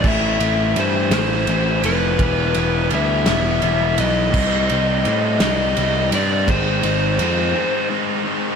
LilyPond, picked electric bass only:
\new Staff \with { instrumentName = "Picked electric bass" } { \clef bass \time 6/8 \key a \minor \tempo 4. = 56 a,,8 a,,8 g,8 a,,8 a,,8 f,,8 | e,,8 e,,8 d,8 e,,8 e,,8 b,,8 | c,8 c,8 a,8 c,8 c,8 g,8 | gis,,8 gis,,8 f,8 r4. | }